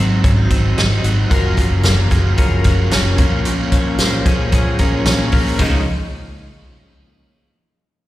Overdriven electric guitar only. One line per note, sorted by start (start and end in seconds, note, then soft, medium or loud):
0.00 0.50 D#3 medium
0.00 0.52 F#3 medium
0.00 0.52 C4 medium
0.00 0.52 D#4 medium
0.51 0.77 D#3 medium
0.51 0.78 F#3 medium
0.51 0.79 C4 medium
0.51 0.79 D#4 medium
0.78 1.03 D#3 medium
0.78 1.04 F#3 medium
0.78 1.05 C4 medium
0.78 1.05 D#4 medium
1.04 1.31 D#3 medium
1.04 1.32 F#3 medium
1.04 1.32 C4 medium
1.04 1.32 D#4 medium
1.31 1.45 F#2 medium
1.31 1.45 C#3 medium
1.31 1.45 F3 medium
1.31 1.45 A#3 medium
1.31 1.44 C#4 loud
1.46 2.12 F3 medium
1.46 2.13 A#3 medium
1.46 2.14 C#4 medium
2.12 2.65 C#3 medium
2.12 2.66 F3 medium
2.12 2.67 A#3 medium
2.12 2.68 C#4 medium
2.66 2.91 C#3 medium
2.66 2.92 F3 medium
2.66 2.93 A#3 medium
2.66 2.94 C#4 medium
2.92 3.19 C#3 medium
2.92 3.19 F3 medium
2.92 3.20 A#3 medium
2.92 3.20 C#4 medium
3.20 3.46 A#2 medium
3.20 3.47 F3 medium
3.20 3.47 A#3 medium
3.20 3.47 C#4 medium
3.47 3.60 A#2 medium
3.47 3.60 F3 medium
3.47 3.60 A#3 medium
3.47 3.59 C#4 medium
3.60 4.27 F3 medium
3.60 4.27 A#3 medium
3.60 4.29 C#4 medium
4.26 4.79 A#2 medium
4.26 4.80 F3 medium
4.26 4.80 A#3 medium
4.26 4.82 C#4 medium
4.80 5.05 A#2 medium
4.80 5.06 F3 medium
4.80 5.06 A#3 medium
4.80 5.07 C#4 medium
5.06 5.31 A#2 medium
5.06 5.32 F3 medium
5.06 5.33 A#3 medium
5.06 5.34 C#4 medium
5.33 5.59 A#2 medium
5.33 5.60 F3 medium
5.33 5.60 A#3 medium
5.33 5.61 C#4 medium
5.60 5.81 C#3 medium
5.60 5.82 F3 medium
5.60 5.82 G#3 medium
5.60 5.82 D#4 medium